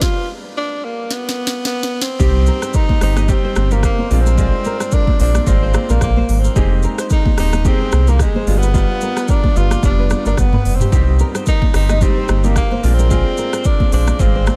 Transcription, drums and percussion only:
0.01 kick loud
0.01 snare medium
1.10 snare medium
1.29 snare medium
1.47 snare medium
1.65 snare medium
1.83 snare loud
2.02 snare medium
2.20 kick loud
2.20 low conga medium
2.20 shaker medium
2.46 shaker medium
2.62 cross-stick medium
2.62 shaker medium
2.73 kick loud
2.73 shaker medium
2.89 kick medium
2.89 high conga medium
3.01 cross-stick medium
3.01 open hi-hat medium
3.01 shaker medium
3.16 cross-stick medium
3.16 high conga medium
3.16 shaker medium
3.28 kick loud
3.28 low conga medium
3.28 shaker medium
3.56 cross-stick loud
3.56 high conga medium
3.56 shaker medium
3.71 high conga medium
3.71 shaker medium
3.83 kick loud
3.83 cross-stick medium
3.83 shaker medium
3.99 high conga medium
4.11 open hi-hat medium
4.11 low conga medium
4.11 shaker soft
4.26 shaker medium
4.38 kick loud
4.38 low conga medium
4.38 shaker medium
4.64 shaker medium
4.80 cross-stick medium
4.80 shaker medium
4.91 kick loud
4.91 shaker medium
5.07 kick medium
5.07 high conga medium
5.20 open hi-hat medium
5.20 shaker medium
5.35 cross-stick medium
5.35 high conga medium
5.35 shaker medium
5.47 kick loud
5.47 low conga medium
5.47 shaker medium
5.74 cross-stick loud
5.74 high conga medium
5.74 shaker medium
5.89 high conga medium
5.89 shaker medium
6.01 kick medium
6.01 cross-stick medium
6.01 shaker medium
6.17 high conga medium
6.29 open hi-hat medium
6.29 low conga medium
6.29 shaker soft
6.44 shaker medium
6.56 kick loud
6.56 low conga medium
6.56 shaker medium
6.83 shaker medium
6.98 cross-stick medium
6.98 shaker medium
7.10 kick loud
7.10 shaker medium
7.26 kick medium
7.26 high conga medium
7.38 cross-stick medium
7.38 open hi-hat medium
7.38 shaker medium
7.53 cross-stick medium
7.53 high conga medium
7.53 shaker medium
7.65 kick loud
7.65 low conga medium
7.65 shaker medium
7.92 cross-stick loud
7.92 high conga medium
7.92 shaker medium
8.07 high conga medium
8.07 shaker medium
8.19 kick medium
8.19 cross-stick medium
8.19 shaker medium
8.35 high conga medium
8.47 open hi-hat medium
8.47 low conga medium
8.47 shaker soft
8.63 shaker medium
8.74 kick loud
8.74 low conga medium
8.74 shaker medium
9.01 shaker medium
9.17 cross-stick medium
9.17 shaker medium
9.28 kick loud
9.28 shaker medium
9.44 kick medium
9.44 high conga medium
9.56 shaker medium
9.71 cross-stick medium
9.71 high conga medium
9.71 shaker medium
9.83 kick loud
9.83 low conga medium
9.83 shaker medium
10.10 cross-stick loud
10.10 high conga medium
10.10 shaker medium
10.25 high conga medium
10.25 shaker medium
10.37 kick medium
10.37 cross-stick medium
10.37 shaker medium
10.53 mid tom medium
10.53 high conga medium
10.65 open hi-hat medium
10.65 low conga medium
10.65 shaker soft
10.80 mid tom medium
10.80 shaker medium
10.92 kick loud
10.92 low conga medium
10.92 shaker medium
11.19 shaker medium
11.35 cross-stick medium
11.35 shaker medium
11.46 kick loud
11.46 shaker medium
11.62 kick medium
11.62 high conga medium
11.74 cross-stick loud
11.74 open hi-hat medium
11.74 shaker medium
11.89 cross-stick medium
11.89 high conga medium
11.89 shaker medium
12.01 kick loud
12.01 low conga medium
12.01 shaker medium
12.28 cross-stick loud
12.28 high conga medium
12.28 shaker medium
12.44 high conga medium
12.44 shaker medium
12.56 kick medium
12.56 cross-stick medium
12.56 shaker medium
12.71 high conga medium
12.84 open hi-hat medium
12.84 low conga medium
12.84 shaker soft
12.99 shaker medium
13.11 kick loud
13.11 low conga medium
13.11 shaker medium
13.37 shaker medium
13.53 cross-stick medium
13.53 shaker medium
13.64 kick loud
13.64 shaker medium
13.80 kick medium
13.80 high conga medium
13.92 open hi-hat medium
13.92 shaker medium
14.07 cross-stick medium
14.07 high conga medium
14.07 shaker medium
14.19 kick loud
14.19 low conga medium
14.19 shaker medium
14.46 cross-stick loud
14.46 high conga medium
14.46 shaker medium

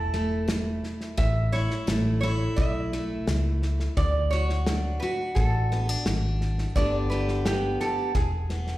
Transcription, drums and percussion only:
0.14 snare soft
0.48 snare medium
0.48 hi-hat pedal medium
0.84 snare soft
1.01 snare soft
1.18 kick loud
1.18 snare soft
1.53 snare soft
1.71 snare soft
1.88 snare medium
1.88 hi-hat pedal medium
2.23 snare soft
2.58 kick loud
2.58 snare soft
2.92 snare soft
3.27 snare loud
3.27 hi-hat pedal medium
3.62 snare soft
3.80 snare soft
3.97 kick loud
3.97 snare soft
4.32 snare soft
4.49 snare soft
4.67 snare loud
4.67 hi-hat pedal medium
5.01 snare soft
5.36 kick medium
5.36 snare soft
5.71 snare soft
6.06 snare loud
6.06 hi-hat pedal medium
6.41 snare soft
6.58 snare soft
6.76 kick loud
6.76 snare soft
7.11 snare soft
7.28 snare soft
7.45 snare loud
7.45 hi-hat pedal medium
7.80 snare soft
8.15 kick loud
8.15 snare soft
8.50 snare soft
8.67 snare soft

